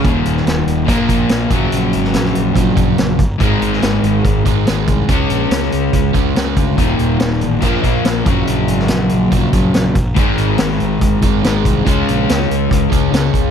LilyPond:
<<
  \new Staff \with { instrumentName = "Overdriven electric guitar" } { \clef bass \time 4/4 \key ees \minor \tempo 4 = 142 <ees, bes, ees>2 <bes, f bes>4. <ges, des ges>8~ | <ges, des ges>2.~ <ges, des ges>8 r8 | <aes, ees aes>1 | <des aes des'>1 |
<ees, bes, ees>2 <bes, f bes>4. <ges, des ges>8~ | <ges, des ges>2.~ <ges, des ges>8 r8 | <aes, ees aes>1 | <des aes des'>1 | }
  \new Staff \with { instrumentName = "Overdriven electric guitar" } { \clef bass \time 4/4 \key ees \minor <ees, bes, ees>2 <bes, f bes>4. <ges, des ges>8~ | <ges, des ges>2 <ges, des ges>8 <ges, des ges>4 r8 | <aes, ees aes>2~ <aes, ees aes>8 <aes, ees aes>8 <aes, ees aes>4 | <des aes des'>2~ <des aes des'>8 <des aes des'>8 <des aes des'>4 |
<ees, bes, ees>2 <bes, f bes>4. <ges, des ges>8~ | <ges, des ges>2 <ges, des ges>8 <ges, des ges>4 r8 | <aes, ees aes>2~ <aes, ees aes>8 <aes, ees aes>8 <aes, ees aes>4 | <des aes des'>2~ <des aes des'>8 <des aes des'>8 <des aes des'>4 | }
  \new Staff \with { instrumentName = "Fingered electric bass" } { \clef bass \time 4/4 \key ees \minor ees,,8 ees,,8 ees,,8 ees,,8 bes,,8 bes,,8 bes,,8 bes,,8 | bes,,8 aes,,8 bes,,8 bes,,8 bes,,8 bes,,8 bes,,8 g,,8 | aes,,8 aes,,8 aes,,8 aes,,8 aes,,8 aes,,8 aes,,8 c,8 | des,8 bes,,8 des,8 des,8 des,8 des,8 des,8 d,8 |
ees,,8 ees,,8 ees,,8 a,,8 bes,,8 bes,,8 bes,,8 bes,,8 | bes,,8 aes,,8 bes,,8 bes,,8 bes,,8 bes,,8 bes,,8 bes,,8 | aes,,8 aes,,8 aes,,8 aes,,8 aes,,8 aes,,8 aes,,8 c,8 | des,8 bes,,8 des,8 des,8 des,8 des,8 des,8 des,8 | }
  \new DrumStaff \with { instrumentName = "Drums" } \drummode { \time 4/4 <hh bd>8 hh16 sn16 <hh sn>8 hh8 <hh bd>8 <hh bd>8 <hh sn>8 <hh bd>8 | hh8 hh16 sn16 <hh sn>16 sn16 hh8 <hh bd>8 <hh bd>8 <hh sn>8 <hh bd>8 | <hh bd>8 hh16 sn16 <hh sn>8 hh8 <hh bd>8 <hh bd>8 <hh sn>8 <hh bd>8 | <hh bd>8 hh8 <hh sn>16 sn16 hh8 <hh bd>8 <hh bd>8 <hh sn>8 <hh bd>8 |
<hh bd>8 hh8 <hh sn>16 sn16 hh8 <hh bd>8 <hh bd>8 <hh sn>8 <hh bd>8 | hh8 hh16 sn16 <hh sn>8 hh8 <hh bd>8 <hh bd>8 <hh sn>8 <hh bd>8 | <hh bd>8 hh8 <hh sn>16 sn16 hh8 <hh bd>8 <hh bd>8 <hh sn>8 <hh bd>8 | <hh bd>8 hh8 <hh sn>16 sn16 hh8 <hh bd>8 <hh bd>8 <hh sn>8 <hh bd>8 | }
>>